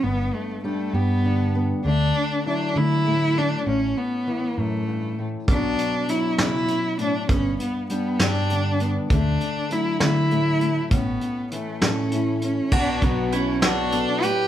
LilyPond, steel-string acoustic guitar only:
\new Staff \with { instrumentName = "Steel-string acoustic guitar" } { \clef bass \time 6/8 \key b \minor \tempo 4. = 66 << { b4 d'8 g'8 d'8 b8 | a4 e'8 a8 a8 a8 | cis'4 e'2 | <fis b d' fis'>2. |
b4 d'8 g'8 d'8 b8 | a4 a8 a8 a8 a8 | cis'4 e'8 a'8 e'8 cis'8 | r2. | } \\ { g,4 g4 d4 | d4 fis4 a,4 | a,4 e8 fis,8 g,8 a,8 | b,4 fis8 cis8 b,8 a,8 |
g,4 g4 d4 | d4 fis4 a,4 | a,4 e4 a,4 | b,8 fis4. b,8 a,8 | } >> }